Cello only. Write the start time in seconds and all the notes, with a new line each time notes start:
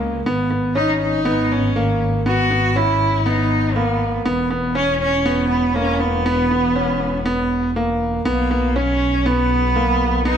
Already playing: G#3
0.75 D#4
1.01 D#4
1.52 C#4
2.27 F#4
2.76 E4
3.26 D#4
3.75 B3
4.76 C#4
5.01 C#4
5.49 B3
5.74 C#4
5.99 B3
8.27 A#3
8.76 C#4
9.26 B3
10.27 D#4